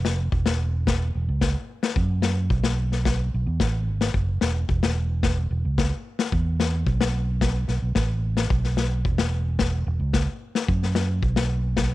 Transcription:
0.00 0.29 F1 medium
0.05 snare medium
0.32 1.10 E1 medium
0.32 kick medium
0.46 snare medium
0.87 kick medium
0.87 snare medium
1.15 1.28 E1 medium
1.29 1.54 C#2 medium
1.41 kick medium
1.41 snare medium
1.83 snare medium
1.96 2.48 F#2 medium
1.96 kick medium
2.22 snare medium
2.50 3.29 B1 medium
2.50 kick medium
2.64 snare medium
2.92 snare soft
3.05 kick medium
3.05 snare medium
3.34 3.46 B1 medium
3.46 3.59 E2 medium
3.60 3.86 A1 medium
3.60 kick medium
3.60 snare medium
3.87 4.12 G#1 medium
4.01 snare medium
4.14 4.39 F#1 medium
4.14 kick medium
4.41 4.66 E1 medium
4.41 snare medium
4.69 5.47 E1 medium
4.69 kick medium
4.83 snare medium
5.23 kick medium
5.23 snare medium
5.51 5.64 E1 medium
5.65 5.91 C#2 medium
5.78 kick medium
5.78 snare medium
6.19 snare medium
6.32 6.84 E2 medium
6.32 kick medium
6.60 snare medium
6.86 7.65 B1 medium
6.86 kick medium
7.01 snare medium
7.41 kick medium
7.41 snare medium
7.68 7.82 B1 medium
7.68 snare soft
7.82 7.95 B1 medium
7.95 8.47 A1 medium
7.95 kick medium
7.95 snare medium
8.37 snare medium
8.50 9.02 B1 medium
8.50 kick medium
8.64 snare soft
8.77 snare medium
9.05 9.83 E1 medium
9.05 kick medium
9.18 snare medium
9.59 kick medium
9.59 snare medium
9.87 9.99 E1 medium
10.00 10.26 C#2 medium
10.13 kick medium
10.13 snare medium
10.55 snare medium
10.68 11.20 F#2 medium
10.68 kick medium
10.83 snare soft
10.95 snare medium
11.23 11.94 B1 medium
11.23 kick medium
11.36 snare medium
11.77 kick medium
11.77 snare medium

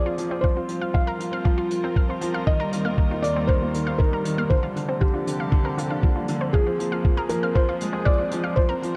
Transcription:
0.00 0.18 F3 medium
0.00 0.43 F3 medium
0.00 1.25 A#3 medium
0.00 0.05 C4 medium
0.00 0.30 F4 medium
0.00 0.44 G#4 medium
0.00 0.46 G#4 medium
0.00 0.45 D5 medium
0.05 0.17 C4 medium
0.05 0.17 F4 loud
0.18 0.30 F3 medium
0.18 closed hi-hat medium
0.30 0.38 C4 loud
0.30 0.42 F4 medium
0.41 0.55 F3 medium
0.41 4.51 G3 medium
0.41 0.95 C5 medium
0.41 0.51 F5 medium
0.41 kick medium
0.53 5.26 C4 medium
0.53 0.68 C4 medium
0.53 5.31 F4 medium
0.57 0.68 F4 medium
0.68 0.76 F3 medium
0.68 closed hi-hat medium
0.81 0.93 F4 medium
0.81 0.93 F5 medium
0.94 1.06 F3 medium
0.94 1.42 F5 medium
0.94 kick loud
1.06 1.19 A#4 medium
1.06 1.12 A#4 loud
1.06 5.31 A#4 medium
1.18 1.31 F3 medium
1.18 closed hi-hat medium
1.31 1.44 C4 medium
1.31 1.40 F5 medium
1.44 1.57 F3 medium
1.44 1.50 F4 medium
1.44 kick loud
1.57 1.70 F4 medium
1.57 1.69 F4 loud
1.70 1.77 F3 medium
1.70 closed hi-hat medium
1.83 1.91 C4 medium
1.83 1.95 A#4 medium
1.96 2.08 F3 medium
1.96 2.04 F5 medium
1.96 kick medium
2.09 2.21 C4 medium
2.09 2.20 F4 medium
2.21 2.33 F3 medium
2.21 closed hi-hat medium
2.34 2.46 F4 medium
2.34 2.45 F5 medium
2.46 4.50 D#2 medium
2.46 2.59 D#3 medium
2.46 3.26 D#5 loud
2.46 kick loud
2.60 2.72 G3 medium
2.60 2.64 A#4 loud
2.72 2.79 D#3 medium
2.72 closed hi-hat medium
2.85 2.97 A#3 medium
2.85 2.92 F5 medium
2.98 3.10 D#3 medium
2.98 3.02 F4 medium
2.98 kick loud
3.10 3.23 D#4 medium
3.10 3.22 F4 medium
3.22 3.35 D#3 medium
3.22 3.49 D5 medium
3.22 closed hi-hat medium
3.36 3.48 G3 medium
3.36 3.43 C4 loud
3.47 3.61 D#3 medium
3.47 4.00 C5 medium
3.47 3.56 F5 medium
3.47 kick loud
3.62 3.74 A#3 medium
3.62 3.73 F4 medium
3.74 3.82 D#3 medium
3.74 closed hi-hat medium
3.87 3.99 D#4 medium
3.87 3.98 F5 medium
3.98 4.12 D#3 medium
3.98 4.51 A#4 medium
3.98 kick loud
4.11 4.24 G3 medium
4.11 4.17 A#4 medium
4.24 4.37 D#3 medium
4.24 closed hi-hat medium
4.37 4.50 A#3 medium
4.37 4.45 F5 medium
4.50 6.54 C3 medium
4.50 4.62 D3 medium
4.50 4.55 F4 medium
4.50 5.03 C5 medium
4.50 kick loud
4.54 8.57 F3 medium
4.63 4.75 G3 medium
4.63 4.74 F4 loud
4.76 4.83 D3 medium
4.76 closed hi-hat medium
4.88 8.96 A#3 medium
4.88 5.01 C4 medium
4.88 4.96 C4 medium
5.01 5.14 D3 medium
5.01 5.48 G4 medium
5.01 5.09 F5 medium
5.01 kick loud
5.05 6.54 G4 medium
5.13 5.26 D4 medium
5.13 5.25 F4 medium
5.26 5.39 D3 medium
5.26 closed hi-hat medium
5.39 5.51 G3 medium
5.39 5.51 F5 medium
5.52 5.64 D3 loud
5.52 kick loud
5.64 5.77 C4 medium
5.64 5.69 A#4 medium
5.77 5.84 D3 medium
5.77 5.82 F4 medium
5.77 closed hi-hat medium
5.90 6.02 D4 medium
5.90 5.98 F5 medium
6.03 6.15 D3 medium
6.03 6.14 F3 medium
6.03 kick loud
6.16 6.28 G3 medium
6.16 6.27 F4 medium
6.28 6.41 D3 medium
6.28 closed hi-hat medium
6.41 6.53 C4 medium
6.41 6.48 C5 medium
6.53 6.66 F3 medium
6.53 7.32 G#4 medium
6.53 6.61 F5 medium
6.53 kick medium
6.67 6.79 C4 medium
6.67 6.78 F4 medium
6.79 6.86 F3 medium
6.79 closed hi-hat medium
6.92 7.04 F4 medium
6.92 7.03 F5 medium
7.04 7.16 F3 medium
7.04 kick loud
7.17 7.29 G#4 medium
7.17 7.22 A#4 loud
7.29 7.42 F3 medium
7.29 7.56 A#4 medium
7.29 closed hi-hat medium
7.37 8.57 G#4 medium
7.43 7.55 C4 medium
7.43 7.50 F5 medium
7.55 7.67 F3 loud
7.55 7.60 F4 medium
7.55 8.08 C5 medium
7.55 kick loud
7.68 7.80 F4 medium
7.68 7.79 F4 loud
7.80 7.93 G#3 medium
7.80 closed hi-hat medium
7.93 8.01 C4 loud
7.93 8.06 G#4 medium
8.05 8.19 F3 medium
8.05 8.58 D5 medium
8.05 8.13 F5 medium
8.05 kick loud
8.18 8.31 C4 medium
8.18 8.30 F4 medium
8.31 8.44 F3 medium
8.31 closed hi-hat medium
8.44 8.56 F4 medium
8.44 8.55 F5 medium
8.56 8.69 F3 medium
8.56 8.96 G3 medium
8.56 8.96 C5 medium
8.56 kick medium
8.65 8.96 C4 medium
8.69 8.82 C4 medium
8.69 8.74 A#4 loud
8.69 8.96 A#4 medium
8.82 8.90 F3 medium
8.82 closed hi-hat medium
8.93 8.96 F4 medium

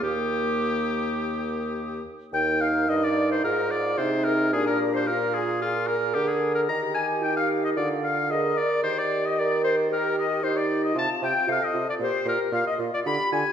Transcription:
0.02 2.01 D#2 medium
0.02 2.02 A#3 medium
0.02 2.05 G4 medium
0.02 2.02 G4 medium
0.02 2.02 D#6 medium
2.32 2.89 D#2 medium
2.32 3.46 D#4 medium
2.32 3.46 A#4 medium
2.32 2.38 G5 medium
2.32 2.62 G5 loud
2.61 2.67 F5 medium
2.61 2.90 F5 medium
2.88 3.43 G2 medium
2.88 3.06 D#5 medium
2.88 2.95 D#5 medium
3.03 3.31 D5 medium
3.30 3.43 C5 medium
3.30 3.44 C5 medium
3.44 3.97 G#2 medium
3.44 3.97 F4 medium
3.44 3.98 G#4 medium
3.44 3.72 A#4 medium
3.44 3.73 A#4 medium
3.71 3.98 D5 medium
3.71 3.99 D5 medium
3.97 4.54 C3 medium
3.97 4.55 D#4 medium
3.97 4.53 G#4 medium
3.97 4.26 C5 medium
3.97 4.04 C5 medium
4.24 4.52 A#4 medium
4.24 4.32 A#4 medium
4.52 6.17 A#2 medium
4.52 5.10 D4 medium
4.52 5.08 G4 medium
4.52 4.66 G#4 medium
4.52 4.69 G#4 medium
4.67 4.79 A#4 medium
4.67 4.95 A#4 medium
4.93 5.07 C5 medium
4.93 5.09 C5 medium
5.07 5.63 F4 medium
5.07 5.64 F4 medium
5.07 5.35 A#4 medium
5.07 5.34 A#4 medium
5.34 5.61 G#4 medium
5.34 5.42 G#4 medium
5.61 5.89 F4 medium
5.61 5.68 F4 medium
5.61 6.17 G#4 medium
5.61 6.17 A#4 medium
5.87 6.15 A#4 medium
5.87 5.95 A#4 medium
6.14 6.69 D3 medium
6.14 6.29 G4 medium
6.14 6.28 G4 medium
6.14 6.69 G#4 medium
6.14 6.68 A#4 medium
6.27 6.54 G#4 medium
6.27 6.57 G#4 medium
6.55 6.61 A#4 medium
6.55 6.71 A#4 medium
6.68 7.75 D#3 medium
6.68 7.24 G4 medium
6.68 7.78 G4 medium
6.68 6.81 A#5 medium
6.68 6.96 A#5 medium
6.94 7.07 G#5 medium
6.94 7.24 G#5 medium
7.23 7.79 D#4 medium
7.23 7.36 G5 medium
7.23 7.35 G5 medium
7.36 7.65 F5 medium
7.36 7.49 F5 medium
7.63 7.77 D#5 medium
7.63 7.70 D#5 medium
7.76 8.55 D3 medium
7.76 8.29 F4 medium
7.76 8.32 A#4 medium
7.76 7.89 D5 medium
7.76 8.05 D5 medium
8.04 8.32 F5 medium
8.30 8.65 G#4 medium
8.30 9.08 A#4 medium
8.30 8.59 D#5 medium
8.30 8.60 D#5 medium
8.58 8.83 D5 medium
8.58 8.84 D5 medium
8.83 10.92 D#3 medium
8.83 9.86 G4 medium
8.83 9.00 C5 medium
8.83 8.97 C5 medium
8.98 9.23 D5 medium
8.98 9.27 D5 medium
9.26 9.40 D#5 medium
9.26 9.41 D#5 medium
9.38 9.87 A#4 medium
9.38 9.63 D5 medium
9.63 9.69 C5 medium
9.63 9.76 C5 medium
9.90 10.41 G4 medium
9.90 10.42 G4 medium
9.90 10.16 A#4 medium
9.90 10.17 A#4 medium
10.17 10.45 D#5 medium
10.43 10.97 D#4 medium
10.43 10.93 G4 medium
10.43 10.56 C5 medium
10.43 10.58 C5 medium
10.57 10.84 D5 medium
10.57 10.83 D5 medium
10.82 10.95 D#5 medium
10.82 10.96 D#5 medium
10.94 11.08 C3 medium
10.94 11.06 F4 medium
10.94 11.51 F4 medium
10.94 11.24 A5 medium
10.99 11.10 A5 medium
11.21 11.34 C3 medium
11.21 11.33 F4 medium
11.21 11.50 G5 medium
11.21 11.49 G5 medium
11.47 11.60 C3 medium
11.47 11.59 F4 medium
11.47 12.03 A4 medium
11.47 11.60 F5 medium
11.52 11.66 F5 medium
11.60 11.66 D#5 medium
11.60 11.88 D#5 medium
11.73 11.86 C3 medium
11.73 11.85 F4 medium
11.87 11.92 D5 medium
11.87 11.95 D5 medium
11.98 12.11 A#2 medium
11.98 12.11 F4 medium
11.98 12.52 G4 medium
11.98 12.29 C5 medium
12.03 12.27 C5 medium
12.25 12.37 A#2 medium
12.25 12.38 F4 medium
12.25 12.53 A#4 medium
12.25 12.40 A#4 medium
12.52 12.64 A#2 medium
12.52 12.64 F4 medium
12.52 13.04 F4 medium
12.52 12.59 F5 medium
12.52 12.66 F5 medium
12.67 12.78 D#5 medium
12.67 12.74 D#5 medium
12.79 12.91 A#2 medium
12.79 12.91 F4 medium
12.93 13.08 D5 medium
12.93 13.00 D5 medium
13.05 13.17 D3 medium
13.05 13.17 F4 medium
13.05 13.53 G4 medium
13.05 13.32 B5 medium
13.31 13.44 D3 medium
13.31 13.43 F4 medium
13.31 13.53 G#5 medium
13.31 13.39 G#5 medium

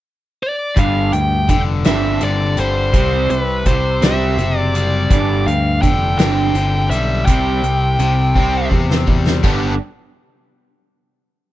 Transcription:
0.43 0.79 D5 medium
0.77 1.11 G1 medium
0.77 1.11 G2 medium
0.77 1.11 D3 medium
0.77 1.11 G3 medium
0.77 1.13 F5 medium
0.77 kick loud
0.77 closed hi-hat medium
1.13 1.47 D2 medium
1.13 1.46 G2 medium
1.13 1.46 D3 medium
1.13 1.49 G5 medium
1.13 closed hi-hat medium
1.49 1.83 F1 medium
1.49 1.82 G2 medium
1.49 1.82 D3 medium
1.49 1.60 G5 medium
1.49 kick medium
1.49 closed hi-hat medium
1.84 2.20 G1 medium
1.84 2.19 G2 medium
1.84 2.20 D3 medium
1.84 2.20 G3 medium
1.84 4.02 C4 medium
1.84 2.23 E5 medium
1.84 snare loud
1.84 closed hi-hat medium
2.21 2.56 G1 medium
2.21 2.54 G2 medium
2.21 2.54 D3 medium
2.21 2.59 D5 medium
2.21 closed hi-hat medium
2.57 2.92 G1 medium
2.57 4.74 G3 medium
2.57 3.30 C5 medium
2.57 closed hi-hat medium
2.93 3.28 C2 medium
2.93 3.28 C3 medium
2.93 3.28 G3 medium
2.93 3.28 C4 medium
2.93 kick medium
2.93 closed hi-hat medium
3.29 3.64 C2 medium
3.29 3.63 C3 soft
3.29 3.63 G3 medium
3.29 3.67 B4 medium
3.29 closed hi-hat medium
3.65 4.00 C2 medium
3.65 3.99 C3 medium
3.65 3.99 G3 medium
3.65 4.04 C5 medium
3.65 kick medium
3.65 closed hi-hat medium
4.01 4.36 C2 medium
4.01 4.36 C3 medium
4.01 4.36 G3 medium
4.01 4.36 C4 medium
4.01 4.59 E5 medium
4.01 snare loud
4.01 closed hi-hat medium
4.37 5.06 F#1 medium
4.37 4.71 C3 medium
4.37 4.71 G3 medium
4.37 closed hi-hat medium
4.59 4.77 D5 medium
4.75 6.91 G3 medium
4.75 5.50 D5 medium
4.75 closed hi-hat medium
5.10 5.45 G1 medium
5.10 5.44 G2 medium
5.10 5.45 D3 medium
5.10 5.45 G3 medium
5.10 kick loud
5.10 closed hi-hat medium
5.46 5.81 D2 medium
5.46 5.79 G2 medium
5.46 5.80 D3 medium
5.46 5.81 F5 medium
5.46 closed hi-hat medium
5.82 6.17 F1 medium
5.82 6.15 G2 medium
5.82 6.16 D3 medium
5.82 6.17 G5 medium
5.82 kick medium
5.82 closed hi-hat soft
6.18 6.53 G1 medium
6.18 6.53 G2 medium
6.18 6.53 D3 medium
6.18 6.54 G3 medium
6.18 7.27 C4 medium
6.18 6.90 G5 loud
6.18 snare loud
6.18 closed hi-hat medium
6.54 6.89 G1 medium
6.54 6.88 G2 medium
6.54 6.88 D3 medium
6.54 closed hi-hat medium
6.90 7.25 B1 medium
6.90 9.07 G3 medium
6.90 7.25 E5 medium
6.90 closed hi-hat medium
7.26 7.62 C2 loud
7.26 7.61 C3 medium
7.26 7.62 G3 medium
7.26 7.62 C4 medium
7.26 8.67 G5 medium
7.26 kick medium
7.26 closed hi-hat medium
7.63 7.97 C2 medium
7.63 7.96 C3 medium
7.63 7.96 G3 medium
7.63 closed hi-hat medium
7.99 8.34 C2 medium
7.99 8.32 C3 medium
7.99 8.32 G3 medium
7.99 closed hi-hat medium
8.35 8.70 C2 medium
8.35 8.70 C3 medium
8.35 8.70 G3 medium
8.35 8.71 C4 medium
8.35 kick medium
8.71 9.40 E2 medium
8.71 9.05 C3 medium
8.71 9.05 G3 medium
8.71 kick medium
8.91 snare medium
9.07 9.42 G3 medium
9.07 kick medium
9.27 snare medium
9.43 9.78 G1 medium
9.43 9.73 G2 medium
9.43 9.73 D3 medium
9.43 9.73 G3 medium
9.43 9.73 B3 medium
9.43 9.74 D4 medium
9.43 9.74 G4 medium
9.43 kick medium
9.43 crash medium

